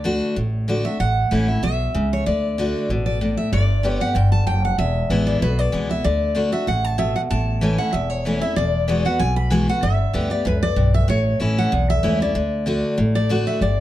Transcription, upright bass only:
0.00 0.20 D2 medium
0.37 0.83 A1 medium
1.00 1.23 A1 medium
1.32 1.58 A1 medium
1.63 1.90 B1 medium
1.95 2.21 C#2 medium
2.27 2.72 D2 medium
2.89 3.35 A1 medium
3.52 3.98 G1 medium
4.15 4.42 G1 medium
4.46 4.73 F#1 medium
4.78 5.01 E1 medium
5.10 5.36 A1 medium
5.41 5.68 B1 medium
5.73 6.00 C#2 medium
6.05 6.51 D2 loud
6.67 7.13 A1 medium
7.31 7.76 A1 loud
7.94 8.39 E1 medium
8.57 9.03 E1 medium
9.20 9.66 B1 medium
9.83 10.06 G1 loud
10.14 10.41 D2 loud
10.45 10.72 C#2 loud
10.76 11.04 B1 loud
11.09 11.32 A1 loud
11.40 11.67 A1 medium
11.73 11.99 B1 loud
12.04 12.31 C#2 loud
12.35 12.81 D2 medium
12.98 13.44 A1 medium
13.61 13.80 G1 medium

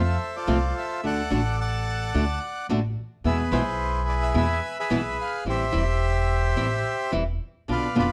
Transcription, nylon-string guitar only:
0.47 0.57 C3 medium
0.47 0.57 F3 medium
0.47 0.57 A3 medium
0.47 0.57 C4 medium
0.47 0.57 F4 medium
1.03 1.20 D3 medium
1.03 1.21 A3 medium
1.03 1.21 D4 medium
1.03 1.21 F#4 medium
1.30 1.40 D3 medium
1.30 1.40 A3 medium
1.30 1.40 D4 medium
1.30 1.40 F#4 medium
2.14 2.23 D3 medium
2.14 2.24 A3 medium
2.14 2.23 D4 medium
2.14 2.24 F#4 medium
2.70 2.79 D3 medium
2.70 2.79 A3 medium
2.70 2.79 D4 medium
2.70 2.79 F#4 medium
3.24 3.42 B2 medium
3.24 3.42 E3 medium
3.24 3.42 G#3 medium
3.24 3.42 B3 medium
3.24 3.42 E4 medium
3.52 3.61 B2 medium
3.52 3.61 E3 medium
3.52 3.61 G#3 medium
3.52 3.62 B3 medium
3.52 3.62 E4 medium
4.34 4.44 B2 medium
4.34 4.44 E3 medium
4.34 4.44 G#3 medium
4.34 4.45 B3 medium
4.34 4.44 E4 medium
4.90 5.00 B2 medium
4.90 5.00 E3 medium
4.90 5.00 G#3 medium
4.90 5.00 B3 medium
4.90 5.00 E4 medium
5.46 5.63 E3 medium
5.46 5.63 G3 medium
5.46 5.64 C4 medium
5.46 5.64 E4 medium
5.72 5.82 E3 medium
5.72 5.83 G3 medium
5.72 5.83 C4 medium
5.72 5.83 E4 medium
6.56 6.66 E3 medium
6.56 6.66 G3 medium
6.56 6.67 C4 medium
6.56 6.66 E4 medium
7.12 7.22 E3 medium
7.12 7.22 G3 medium
7.12 7.22 C4 medium
7.12 7.22 E4 medium
7.68 7.86 B2 medium
7.68 7.86 D3 medium
7.68 7.86 B3 soft
7.68 7.86 D4 medium
7.68 7.87 F4 medium
7.95 8.06 B2 medium
7.95 8.06 D3 medium
7.95 8.06 B3 medium
7.95 8.06 D4 medium
7.95 8.06 F4 medium

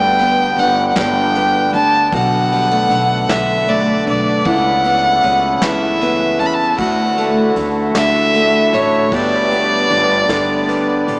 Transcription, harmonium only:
0.00 4.42 D3 medium
0.00 2.11 G3 medium
0.00 6.75 B3 medium
2.12 9.08 A3 medium
4.47 6.77 C#3 medium
4.47 9.09 E4 medium
6.78 9.10 D3 medium
6.78 9.10 F#4 medium
9.11 11.20 G3 medium
9.11 11.20 B3 medium
9.11 11.20 D4 medium

